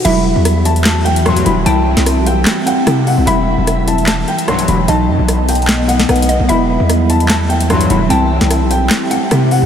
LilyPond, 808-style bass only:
\new Staff \with { instrumentName = "808-style bass" } { \clef bass \time 4/4 \key e \minor \tempo 4 = 149 e,,8. e,2~ e,8. e,,8 | c,8. c,8 b,,8. r4 c8. c,16 | e,,8. e,,4.~ e,,16 r4 e,,8 | b,,8 fis,16 b,,2~ b,,16 b,,8. b,,16 |
e,,8. e,2~ e,8. e,,8 | c,8. c,8 b,,8. r4 c8. c,16 | }